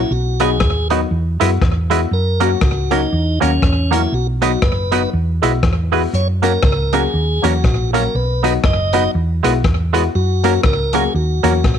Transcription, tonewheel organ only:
Already playing: E4
0.12 F#4
0.42 G#4
2.14 A#4
2.44 F#4
2.64 F#4
2.93 D#4
3.43 C#4
3.94 E4
4.14 F#4
4.44 F#4
4.64 B4
6.15 C#5
6.44 A#4
6.65 A#4
6.94 G#4
7.45 F#4
7.96 A#4
8.16 B4
8.45 B4
8.65 D#5
10.15 F#4
10.66 A#4
10.95 G#4
11.16 F#4

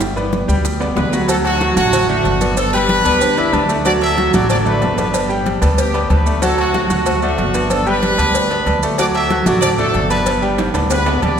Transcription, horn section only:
0.97 D4 G4 B4
1.29 D4 F#4 A4
1.45 A3 D4 F#4
1.77 A3 D4 F#4
2.08 A3 D4 F#4
2.57 D4 A4
2.73 D4 G4 B4
3.85 F#4 A4 D5
4.01 A4 E5
4.33 D5
4.49 F#4 A4 D5
4.65 D4 F#4 B4
4.98 D4 G4 B4
5.79 B3 D4 G4
6.11 D4 G4 B4
6.43 D4 F#4 A4
6.60 A3 D4 F#4
6.91 A3 D4 F#4
7.23 A3 D4 F#4
7.71 D4 A4
7.88 D4 G4 B4
8.99 F#4 A4 D5
9.15 A4 E5
9.47 D5
9.61 F#4 A4 D5
9.78 D4 F#4 A4
10.09 D4 G4 B4
10.91 D4 G4 B4
11.22 G4 B4 D5

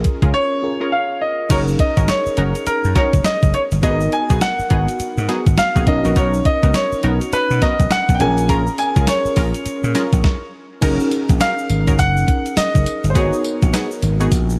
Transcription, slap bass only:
0.22 C#2
1.50 F#1
1.97 G#1
2.26 muted slap bass stroke
2.38 F#1
2.67 muted slap bass stroke
2.85 F#2
3.13 F#1
3.25 muted slap bass stroke
3.43 F#1
3.72 G1
3.83 G#1
4.30 B1
4.59 muted slap bass stroke
4.71 G#1
5.00 muted slap bass stroke
5.18 G#2
5.47 G#1
5.76 A#1
5.87 B1
6.05 A#1
6.16 B1
6.63 C#2
6.92 muted slap bass stroke
7.04 B1
7.33 muted slap bass stroke
7.51 B2
7.80 B1
7.91 muted slap bass stroke
8.09 B1
8.20 A#1
8.96 C#2
9.25 muted slap bass stroke
9.37 A#1
9.66 muted slap bass stroke
9.84 A#2
10.13 A#1
10.82 F#1
11.29 A#1
11.70 G#1
11.99 F#1
12.57 muted slap bass stroke
12.75 F#1
13.04 G1
13.15 G#1
13.62 A#1
14.03 G#1
14.32 A#1

